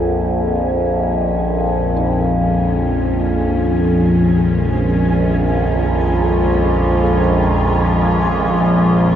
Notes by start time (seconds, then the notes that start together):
Already playing: A#1 F2 A#2 D#3 G#3 C#4 G#4 G#5
1.96 D#4
2.22 F4